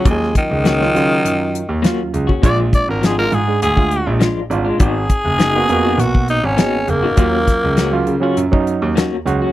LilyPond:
<<
  \new Staff \with { instrumentName = "Tenor saxophone" } { \time 4/4 \key ees \minor \tempo 4 = 101 aes8 ees2. r8 | d''16 r16 d''16 bes'16 aes'16 bes'16 aes'8 aes'4 r4 | aes'2 ges'8 ees'16 des'8. bes8~ | bes2~ bes8 r4. | }
  \new Staff \with { instrumentName = "Clean electric guitar" } { \time 4/4 \key ees \minor r4 <bes des' ges'>16 r4. r16 <bes des' ges'>16 r8 <des' ges'>16 | <f aes d' f'>16 r8. <f aes d' f'>16 r4. r16 <f aes d' f'>16 r8 <aes d' f'>16 | <ees ces' ees' ges'>16 r8. <ees ces' ees' ges'>16 r8 <ces' ees' ges'>16 r4 <ees ces' ees' ges'>16 r8 <ces' ees' ges'>16 | <bes des' ges'>16 r8. <bes des' ges'>16 r8 <des' ges'>16 r4 <bes des' ges'>16 r8 <des' ges'>16 | }
  \new Staff \with { instrumentName = "Reed electric piano" } { \time 4/4 \key ees \minor <ges des' f'>8. r8 <ges des' f'>16 <ges des' f'>4~ <ges des' f'>16 r16 <ges des' f'>8. r16 | <aes d' f'>4 r16 <aes d' f'>8 <aes d' aes'>8 <aes d' f'>4 r16 <aes d' f'>8 | r4 r16 <bes ces' ges'>16 <bes ces' ges'>4~ <bes ces' ges'>16 r16 <bes ces' aes'>8. r16 | <ges des' f'>4 r16 <ges des' f'>8 <ges des' f'>8 <ges des' ees'>4 r16 <ges des' ges'>8 | }
  \new Staff \with { instrumentName = "Grand piano" } { \clef bass \time 4/4 \key ees \minor ees,8 r16 des,8. des8 ges,8. ees,16 r16 ees,16 des,16 ees,16 | bes,,8 r16 aes,,8. aes,8 d,8. bes,,16 r16 bes,,16 aes,,16 bes,,16 | aes,,8 r16 ges,,8. f,8 ces,8. aes,,16 r16 aes,,16 ges,,16 aes,,16 | ees,8 r16 des,8. des8 ges,8. ees,16 r16 ees,16 des,16 ees,16 | }
  \new DrumStaff \with { instrumentName = "Drums" } \drummode { \time 4/4 <hh bd>16 sn16 <hh bd>8 <hh sn>16 sn16 <hh sn>8 hh8 hh8 <hh sn>8 hh16 bd16 | <hh bd>8 <hh bd>8 <hh sn>8 hh8 hh16 bd16 hh8 <hh sn>8 hh8 | <hh bd>8 <hh bd>8 <hh sn>8 hh8 hh16 bd16 hh8 <hh sn>8 hh8 | <hh bd>8 <hh bd sn>8 <hh sn>8 hh8 hh16 bd16 hh8 <hh sn>8 hh8 | }
>>